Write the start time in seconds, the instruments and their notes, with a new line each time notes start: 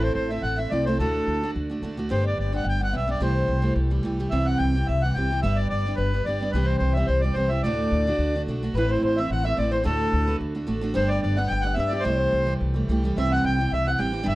Already playing: upright bass A1, steel-string acoustic guitar A2 A3 C4 E4 A4
0.03 accordion C5, flute C5
0.14 upright bass A1, accordion C5, flute C5
0.29 steel-string acoustic guitar A3 C4 E4 A4, accordion E5, flute E5
0.42 upright bass A1, accordion F#5, flute F#5
0.57 steel-string acoustic guitar A3 C4 E4 A4, accordion E5, flute E5
0.70 upright bass C2, steel-string acoustic guitar A3 C4 E4 A4, accordion D5, flute D5
0.85 steel-string acoustic guitar A3 C4 E4, accordion C5, flute C5
0.89 steel-string acoustic guitar A4
0.99 upright bass D2, steel-string acoustic guitar D2 A2 D3 A3 D4 F#4, accordion A4, flute A4
1.27 upright bass D2
1.43 steel-string acoustic guitar D3 A3 D4 F#4
1.56 upright bass D2
1.70 steel-string acoustic guitar D3 A3 D4 F#4
1.82 upright bass D2, steel-string acoustic guitar D3 A3 D4 F#4
1.97 steel-string acoustic guitar D3 A3 D4 F#4
2.10 upright bass G1, steel-string acoustic guitar G3 B3 D4 G4, flute C5, accordion C5
2.24 flute D5, accordion D5
2.38 upright bass G1, flute D5, accordion D5
2.52 steel-string acoustic guitar G3 B3 D4 G4, accordion F#5
2.64 upright bass G1, flute G5
2.69 accordion G5
2.81 steel-string acoustic guitar G3 B3 D4 G4, flute F#5, accordion F#5
2.93 upright bass B1, steel-string acoustic guitar G3 B3 D4 G4, flute E5, accordion E5
3.08 steel-string acoustic guitar G3 B3 D4 G4, accordion D5
3.20 upright bass C2, steel-string acoustic guitar C3 E3 G3 A3 G4, flute C5, accordion C5
3.48 upright bass C2
3.62 steel-string acoustic guitar E3 G3 A3 G4
3.76 upright bass C2
3.90 steel-string acoustic guitar E3 G3 A3 G4
4.03 upright bass C2, steel-string acoustic guitar E3 G3 A3 G4
4.19 steel-string acoustic guitar E3 G3 A3 G4
4.30 upright bass C2, steel-string acoustic guitar C3 E3 G3 C4 G4, accordion E5, flute E5
4.45 accordion F#5, flute F#5
4.58 upright bass C2, accordion G5, flute G5
4.75 steel-string acoustic guitar E3 G3 C4 G4
4.87 upright bass C2, accordion E5, flute E5
5.02 steel-string acoustic guitar E3 G3 C4 G4, accordion F#5, flute F#5
5.14 upright bass C2, steel-string acoustic guitar E3 G3 C4, accordion G5, flute G5
5.18 steel-string acoustic guitar G4
5.31 steel-string acoustic guitar E3 G3 C4 G4
5.42 upright bass G1, steel-string acoustic guitar G3 B3 D4 G4, accordion E5, flute E5
5.56 accordion D5, flute D5
5.69 upright bass G1, accordion D5, flute D5
5.86 steel-string acoustic guitar G3 B3 D4 G4
5.96 upright bass G1, accordion B4, flute B4
6.13 steel-string acoustic guitar G3 B3 D4 G4
6.25 upright bass G1, steel-string acoustic guitar G3 B3 D4 G4, accordion D5, flute D5
6.41 steel-string acoustic guitar G3 B3 D4 G4
6.51 upright bass C2, steel-string acoustic guitar C3 E3, accordion B4, flute B4
6.56 steel-string acoustic guitar G3 C4 G4
6.65 accordion C5, flute C5
6.78 upright bass C2, accordion C5
6.83 flute C5
6.93 accordion E5
6.97 steel-string acoustic guitar E3 G3 C4 G4, flute E5
7.06 upright bass C2, accordion C5, flute C5
7.20 steel-string acoustic guitar E3 G3 C4, accordion D5
7.24 steel-string acoustic guitar G4, flute D5
7.33 upright bass C2, steel-string acoustic guitar E3 G3 C4 G4, accordion C5
7.38 flute C5
7.49 steel-string acoustic guitar E3 G3 C4 G4, accordion E5
7.63 upright bass D2, steel-string acoustic guitar D2 A2 D3 A3 D4 F#4, accordion D5, flute D5
7.91 upright bass D2
8.07 steel-string acoustic guitar D3 A3 D4 F#4
8.18 upright bass D2
8.35 steel-string acoustic guitar D3 A3 D4 F#4
8.47 upright bass B1, steel-string acoustic guitar D3 A3 D4 F#4
8.63 steel-string acoustic guitar D3 A3 D4 F#4
8.74 upright bass A1, steel-string acoustic guitar A2 E3 A3 C4 E4, flute B4, mandolin B4, accordion B4
8.88 flute C5, mandolin C5, accordion C5
9.01 upright bass A1, flute C5, mandolin C5
9.05 accordion C5
9.16 steel-string acoustic guitar E3 A3 C4 E4, flute E5, accordion E5, mandolin E5
9.30 upright bass A1, flute F#5, accordion F#5, mandolin F#5
9.44 steel-string acoustic guitar E3 A3 C4 E4, flute E5, mandolin E5, accordion E5
9.57 upright bass A1, steel-string acoustic guitar E3 A3 C4 E4, flute D5, accordion D5, mandolin D5
9.71 steel-string acoustic guitar E3 A3 C4 E4, accordion C5, flute C5, mandolin C5
9.84 steel-string acoustic guitar D2 A2 D3 A3 D4 F#4, upright bass D2, accordion A4, flute A4, mandolin A4
10.13 upright bass D2
10.26 steel-string acoustic guitar D3 A3 D4 F#4, mandolin B4
10.40 upright bass D2
10.55 steel-string acoustic guitar D3 A3 D4 F#4
10.67 upright bass A1, steel-string acoustic guitar D3 A3 D4 F#4
10.81 steel-string acoustic guitar D3 A3 D4 F#4
10.94 upright bass G1, steel-string acoustic guitar G3 B3 D4 G4, flute C5, accordion C5, mandolin C5
11.08 accordion D5, flute D5, mandolin D5
11.21 upright bass G1, flute D5, accordion D5, mandolin D5
11.36 steel-string acoustic guitar G3 B3 D4 G4, accordion F#5, flute F#5, mandolin F#5
11.47 upright bass G1, accordion G5, flute G5
11.52 mandolin G5
11.61 steel-string acoustic guitar G3 B3 D4, accordion F#5
11.65 steel-string acoustic guitar G4, mandolin F#5
11.74 steel-string acoustic guitar G3 B3 D4 G4, accordion E5
11.78 upright bass G2, flute E5, mandolin E5
11.88 steel-string acoustic guitar G3 B3, accordion D5
11.93 steel-string acoustic guitar D4 G4, mandolin D5
12.00 steel-string acoustic guitar C3, accordion C5
12.04 upright bass C2, steel-string acoustic guitar E3 G3 A3 G4, flute C5, mandolin C5
12.33 upright bass C2
12.46 steel-string acoustic guitar E3 G3 A3 G4
12.61 upright bass C2
12.74 steel-string acoustic guitar E3 G3 A3 G4
12.88 upright bass C2, steel-string acoustic guitar E3 G3 A3 G4
13.04 steel-string acoustic guitar E3 G3 A3 G4
13.16 upright bass C2, steel-string acoustic guitar C3 E3 G3 C4 G4, flute E5, mandolin E5, accordion E5
13.31 flute F#5, accordion F#5, mandolin F#5
13.44 upright bass C2, flute G5, mandolin G5, accordion G5
13.58 steel-string acoustic guitar E3 G3 C4 G4
13.72 upright bass C2, flute E5, accordion E5, mandolin E5
13.87 steel-string acoustic guitar E3 G3 C4 G4, accordion F#5, flute F#5, mandolin F#5
13.98 upright bass A1, steel-string acoustic guitar E3 G3 C4 G4, accordion G5, mandolin G5, flute G5
14.12 steel-string acoustic guitar E3 G3 C4 G4
14.23 steel-string acoustic guitar G3 B3 D4 G4, mandolin E5
14.27 upright bass G1, flute E5, accordion E5